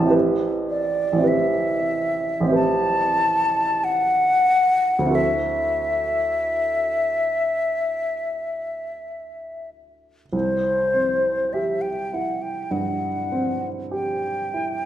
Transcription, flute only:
0, 0, Header, 1, 2, 480
1, 0, Start_track
1, 0, Tempo, 1119403
1, 61, Time_signature, 4, 2, 24, 8
1, 542, Tempo, 1287554
1, 1502, Tempo, 1321586
1, 2462, Tempo, 1284797
1, 3902, Tempo, 1197605
1, 5713, End_track
2, 0, Start_track
2, 0, Title_t, "Flute"
2, 0, Program_c, 0, 73
2, 0, Note_on_c, 0, 81, 88
2, 60, Note_off_c, 0, 81, 0
2, 299, Note_on_c, 0, 74, 88
2, 546, Note_on_c, 0, 76, 83
2, 551, Note_off_c, 0, 74, 0
2, 1019, Note_off_c, 0, 76, 0
2, 1021, Note_on_c, 0, 81, 105
2, 1503, Note_on_c, 0, 78, 120
2, 1508, Note_off_c, 0, 81, 0
2, 1978, Note_on_c, 0, 76, 88
2, 1983, Note_off_c, 0, 78, 0
2, 3663, Note_off_c, 0, 76, 0
2, 3903, Note_on_c, 0, 72, 80
2, 4380, Note_on_c, 0, 76, 64
2, 4386, Note_off_c, 0, 72, 0
2, 4494, Note_on_c, 0, 79, 70
2, 4500, Note_off_c, 0, 76, 0
2, 4626, Note_on_c, 0, 78, 69
2, 4632, Note_off_c, 0, 79, 0
2, 4737, Note_on_c, 0, 79, 70
2, 4743, Note_off_c, 0, 78, 0
2, 4856, Note_on_c, 0, 78, 77
2, 4862, Note_off_c, 0, 79, 0
2, 5243, Note_off_c, 0, 78, 0
2, 5346, Note_on_c, 0, 79, 80
2, 5713, Note_off_c, 0, 79, 0
2, 5713, End_track
0, 0, End_of_file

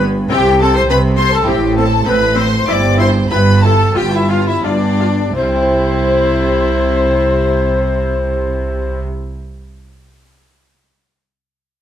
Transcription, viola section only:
0, 0, Header, 1, 2, 480
1, 0, Start_track
1, 0, Key_signature, 0, "major"
1, 0, Tempo, 583090
1, 259, Time_signature, 4, 2, 24, 8
1, 1704, Tempo, 629591
1, 3144, Tempo, 692841
1, 4104, Tempo, 716846
1, 8434, End_track
2, 0, Start_track
2, 0, Title_t, "Viola section"
2, 0, Program_c, 0, 48
2, 16, Note_on_c, 0, 59, 73
2, 82, Note_off_c, 0, 59, 0
2, 253, Note_on_c, 0, 60, 87
2, 319, Note_off_c, 0, 60, 0
2, 492, Note_on_c, 0, 60, 79
2, 558, Note_off_c, 0, 60, 0
2, 732, Note_on_c, 0, 60, 81
2, 798, Note_off_c, 0, 60, 0
2, 965, Note_on_c, 0, 60, 75
2, 1031, Note_off_c, 0, 60, 0
2, 1206, Note_on_c, 0, 60, 90
2, 1272, Note_off_c, 0, 60, 0
2, 1449, Note_on_c, 0, 60, 72
2, 1515, Note_off_c, 0, 60, 0
2, 1699, Note_on_c, 0, 60, 81
2, 1760, Note_off_c, 0, 60, 0
2, 1925, Note_on_c, 0, 60, 77
2, 1986, Note_off_c, 0, 60, 0
2, 2167, Note_on_c, 0, 64, 91
2, 2228, Note_off_c, 0, 64, 0
2, 2404, Note_on_c, 0, 64, 73
2, 2465, Note_off_c, 0, 64, 0
2, 2646, Note_on_c, 0, 64, 75
2, 2707, Note_off_c, 0, 64, 0
2, 2897, Note_on_c, 0, 64, 74
2, 2958, Note_off_c, 0, 64, 0
2, 3139, Note_on_c, 0, 65, 83
2, 3195, Note_off_c, 0, 65, 0
2, 3373, Note_on_c, 0, 65, 70
2, 3428, Note_off_c, 0, 65, 0
2, 3610, Note_on_c, 0, 65, 78
2, 3666, Note_off_c, 0, 65, 0
2, 3856, Note_on_c, 0, 65, 65
2, 3911, Note_off_c, 0, 65, 0
2, 4100, Note_on_c, 0, 64, 82
2, 6534, Note_off_c, 0, 64, 0
2, 8434, End_track
0, 0, End_of_file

